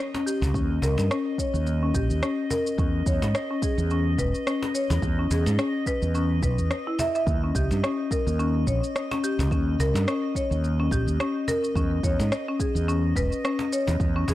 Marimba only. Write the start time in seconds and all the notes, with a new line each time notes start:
Already playing: C#5
0.15 C#4
0.26 G4
0.55 C#4
0.83 A#4
1.11 C#4
1.39 C#5
1.82 C#4
1.95 G4
2.23 C#4
2.51 A#4
2.79 C#4
3.07 C#5
3.51 C#4
3.63 G#4
3.91 C#4
4.19 B4
4.47 C#4
4.75 C#5
5.19 C#4
5.31 G#4
5.59 C#4
5.87 B4
6.15 C#4
6.43 B4
6.87 E4
7.00 E5
7.15 E5
7.44 C#4
7.56 G4
7.84 C#4
8.12 A#4
8.39 C#4
8.67 C#5
9.12 C#4
9.24 G4
9.52 C#4
9.80 A#4
10.08 C#4
10.36 C#5
10.80 C#4
10.92 G4
11.20 C#4
11.48 A#4
11.76 C#4
12.04 C#5
12.48 C#4
12.60 G#4
12.88 C#4
13.17 B4
13.45 C#4
13.73 C#5
14.16 C#4
14.28 G#4